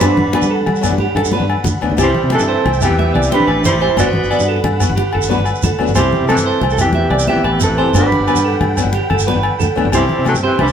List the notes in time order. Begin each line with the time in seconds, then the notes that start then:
Already playing: C5
0.00 G2 F#3 G3 B3 D4 B4 F#5 B5, high conga, low conga, low agogo, shekere
0.17 low conga
0.25 G2, low conga
0.32 B3 D4 B4, muted steel-string acoustic guitar stroke, high conga, low agogo
0.42 G3, low conga, shekere
0.50 A4, low conga
0.59 low conga
0.66 G3, low conga, low agogo
0.75 low conga, shekere
0.81 F#3 B3 D4, low conga, low agogo, shekere
0.90 G2, low conga
0.98 G4, high conga, low conga
1.15 G2 A4, low conga, low agogo
1.23 G2, low conga, shekere
1.32 F#3 B3 D4 B4, high conga
1.40 G2, low conga
1.50 low agogo
1.57 low conga
1.64 D2, high conga, low conga, shekere
1.81 D2 F#3 B3 D4, low agogo
1.90 D2, low conga
1.97 C2 E3 C4 E4 G4, high conga, low conga, low agogo, shekere
2.01 G3 E4 C5 E5 G5
2.15 low conga
2.23 C3, low conga
2.30 E3 C4 E4 G4, muted steel-string acoustic guitar stroke, high conga, low agogo, shekere
2.34 E3 A4
2.39 G2, low conga, shekere
2.48 C5, low conga
2.57 low conga
2.65 C2, high conga, low conga, low agogo
2.73 low conga, shekere
2.80 E3 B3 C4 E4 G4, low conga, low agogo, shekere
2.85 G4
2.90 E2, low conga
2.99 E5, high conga, low conga
3.14 C2 D5, low conga, low agogo
3.23 low conga, shekere
3.29 E3 C4 E4 G4 C5, high conga
3.33 G3 D4 B4
3.40 low conga
3.47 A1 B4, low agogo
3.57 low conga
3.65 G3 E4 C5, high conga, low conga, shekere
3.74 A1
3.80 E3 E4 G4 C5, low agogo
3.89 low conga
3.97 G1 F#3 B3 D4 F#4 D5 F#5 B5, high conga, low agogo, shekere
4.13 low conga
4.23 G1, shekere
4.30 F#3 B3 D4 F#4 D5, low conga, low agogo, shekere
4.39 G2, low conga, shekere
4.48 A4
4.56 low conga
4.64 G2, high conga, low conga, low agogo
4.80 F#3 B3 F#4, low agogo, shekere
4.89 G1, low conga
4.96 G4, high conga
5.13 G1 A4, low agogo
5.22 G1, shekere
5.28 F#3 B3 D4 F#4 B4, high conga
5.38 G1, low conga
5.45 low agogo, shekere
5.55 shekere
5.63 D2 A4, high conga, low conga, shekere
5.73 low conga
5.78 D2 F#3 B3 D4 F#4, low agogo
5.87 G1, low conga, shekere
5.95 C2 E3 G3 C4 E4 G4 C5 E5 G5, muted steel-string acoustic guitar stroke, high conga, low conga, low agogo, shekere
6.13 low conga
6.20 C3, low conga
6.27 E3 C4 E4 G4 A4, high conga, low agogo, shekere
6.36 G2, low conga, shekere
6.46 C5, low conga
6.53 low conga
6.61 C2, high conga, low conga, low agogo
6.69 A4, low conga, shekere
6.73 F#3
6.78 E3 B3 C4 E4 G4, low conga, low agogo, shekere
6.85 E2, low conga
6.93 E5, high conga, low conga
7.10 C2 D5, low conga, low agogo
7.19 low conga, shekere
7.27 E3 B3 C4 E4 G4 E5, high conga
7.36 low conga
7.44 A1 B4, low agogo
7.54 low conga
7.60 E3 C4 A4, low conga, shekere
7.68 A1
7.77 E3 C4 E4 G4 C5, low agogo
7.86 low conga
7.93 G1 F#3 B3 D4 F#4 F#5 G5 B5, high conga, low conga, low agogo, shekere
7.98 G3 B4
8.12 low conga
8.19 G1, low conga
8.27 F#3 B3 F#4 B4, low agogo, shekere
8.34 G2, low conga, shekere
8.45 A4
8.53 low conga
8.61 G2, high conga, low conga, low agogo
8.77 F#3 B3 D4 F#4, low conga, low agogo, shekere
8.85 G1, low conga
8.93 G4, high conga, low conga
9.10 G1 A4, low conga, low agogo
9.19 G1, low conga, shekere
9.26 F#3 B3 D4 F#4 B4, high conga
9.34 G1, low conga
9.43 low agogo
9.53 low conga
9.60 D2 A4, low conga, shekere
9.76 D2 F#3 B3 D4 F#4, low agogo
9.85 G1, low conga
9.92 C2 G3 C4 E4 G4 C5 E5, muted steel-string acoustic guitar stroke, high conga, low conga, low agogo, shekere
10.09 low conga
10.19 C3
10.24 E3 F#3 C4 E4 G4, high conga, low agogo, shekere
10.29 A4
10.34 G2, low conga, shekere
10.43 E3 C4 G4 C5, low conga
10.51 low conga
10.59 C2 G3 D4 B4, high conga, low conga, low agogo
10.68 low conga, shekere